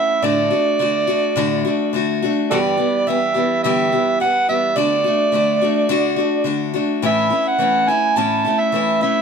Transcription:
0.00 0.23 A3 soft
0.00 0.23 C#4 soft
0.00 0.23 E4 soft
0.00 0.26 E5 loud
0.22 0.51 A2 medium
0.22 0.52 D3 medium
0.22 0.52 A3 medium
0.22 0.51 D4 medium
0.22 0.49 F#4 medium
0.22 1.94 D5 medium
0.50 0.79 A3 soft
0.50 0.80 D4 soft
0.50 0.79 F#4 soft
0.79 1.08 D3 medium
0.79 1.08 A3 medium
0.79 1.08 D4 medium
0.79 1.06 F#4 medium
1.07 1.36 A3 soft
1.07 1.36 D4 soft
1.07 1.36 F#4 medium
1.36 1.64 A2 medium
1.36 1.65 D3 medium
1.36 1.65 A3 medium
1.36 1.65 D4 loud
1.36 1.64 F#4 medium
1.65 1.93 A3 soft
1.65 1.94 D4 medium
1.65 1.93 F#4 medium
1.93 2.21 D3 medium
1.93 2.22 A3 medium
1.93 2.22 D4 medium
1.93 2.21 F#4 medium
2.22 2.52 A3 soft
2.22 2.51 D4 medium
2.22 2.50 F#4 medium
2.51 2.79 G2 medium
2.51 2.79 D3 medium
2.51 2.79 E3 medium
2.51 2.78 G3 medium
2.51 2.77 B3 medium
2.51 2.59 F#4 medium
2.51 2.76 G4 medium
2.51 2.58 A4 medium
2.51 3.10 D5 medium
2.77 3.06 E3 soft
2.77 3.07 G3 soft
2.77 3.07 B3 soft
2.77 3.06 G4 medium
3.07 3.35 E3 medium
3.07 3.36 G3 medium
3.07 3.35 B3 medium
3.07 3.33 G4 medium
3.07 3.63 E5 medium
3.34 3.64 E3 soft
3.34 3.64 G3 soft
3.34 3.64 B3 soft
3.34 3.63 G4 medium
3.63 3.92 G2 medium
3.63 3.92 D3 medium
3.63 3.93 E3 medium
3.63 3.93 G3 medium
3.63 3.91 B3 medium
3.63 3.91 G4 medium
3.63 4.16 E5 medium
3.92 4.19 E3 soft
3.92 4.20 G3 soft
3.92 4.21 B3 soft
3.92 4.20 G4 soft
4.20 4.48 E3 medium
4.20 4.49 G3 medium
4.20 4.48 B3 soft
4.20 4.47 G4 medium
4.20 4.47 F#5 loud
4.49 4.75 E3 soft
4.49 4.76 G3 soft
4.49 4.77 B3 soft
4.49 4.77 G4 soft
4.49 4.78 E5 loud
4.76 5.05 D3 medium
4.76 5.05 A3 medium
4.76 5.05 D4 medium
4.76 5.03 F#4 medium
4.76 6.47 D5 medium
5.04 5.32 A3 soft
5.04 5.33 D4 soft
5.04 5.33 F#4 soft
5.32 5.61 D3 medium
5.32 5.62 A3 medium
5.32 5.61 D4 medium
5.32 5.60 F#4 medium
5.61 5.88 A3 soft
5.61 5.89 D4 medium
5.61 5.90 F#4 medium
5.89 6.18 D3 medium
5.89 6.18 A3 medium
5.89 6.17 D4 medium
5.89 6.15 F#4 medium
6.16 6.44 A3 soft
6.16 6.45 D4 soft
6.16 6.46 F#4 medium
6.44 6.74 D3 medium
6.44 6.74 A3 medium
6.44 6.74 D4 medium
6.44 6.72 F#4 medium
6.74 7.02 A3 soft
6.74 7.03 D4 medium
6.74 7.03 F#4 medium
7.02 7.31 A2 medium
7.02 7.31 E3 medium
7.02 7.32 A3 medium
7.02 7.31 C#4 medium
7.02 7.29 E4 medium
7.02 7.49 E5 medium
7.30 7.59 A3 soft
7.30 7.60 C#4 soft
7.30 7.59 E4 soft
7.48 7.91 F#5 medium
7.59 7.88 E3 medium
7.59 7.88 A3 medium
7.59 7.88 C#4 medium
7.59 7.87 E4 medium
7.88 8.16 A3 soft
7.88 8.17 C#4 soft
7.88 8.17 E4 soft
7.88 8.19 G#5 medium
8.16 8.45 A2 medium
8.16 8.45 E3 medium
8.16 8.45 A3 medium
8.16 8.45 C#4 medium
8.16 8.43 E4 medium
8.16 8.61 A5 loud
8.45 8.73 A3 soft
8.45 8.74 C#4 soft
8.45 8.73 E4 soft
8.60 9.02 E5 medium
8.72 9.01 E3 medium
8.72 9.02 A3 medium
8.72 9.02 C#4 medium
8.72 9.00 E4 medium
9.01 9.22 A3 soft
9.01 9.22 C#4 soft
9.01 9.22 E4 medium
9.01 9.22 E5 medium

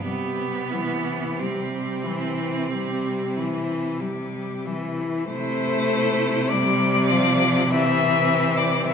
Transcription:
0.03 5.04 C3 soft
0.03 0.74 G3 soft
0.03 1.40 B3 medium
0.03 0.72 G4 soft
0.71 1.41 E3 soft
0.71 1.41 E4 soft
1.39 2.06 G3 soft
1.39 4.01 C4 soft
1.39 2.04 G4 soft
2.03 2.72 E3 soft
2.03 2.70 E4 soft
2.70 3.39 G3 soft
2.70 3.37 G4 soft
3.36 4.02 E3 soft
3.36 4.01 E4 soft
4.00 4.68 G3 soft
4.00 4.67 G4 soft
4.66 5.30 E3 soft
4.66 5.27 E4 soft
5.28 8.94 C3 medium
5.28 6.53 A3 medium
5.28 6.53 E4 medium
5.28 6.51 C5 medium
6.50 7.12 G3 medium
6.50 7.71 C4 medium
6.50 7.72 D5 medium
7.10 7.70 F3 medium
7.70 8.85 E3 medium
7.70 8.94 C4 medium
7.70 8.59 E5 loud
8.57 8.86 D5 medium
8.87 8.94 E3 medium
8.87 8.94 E5 loud

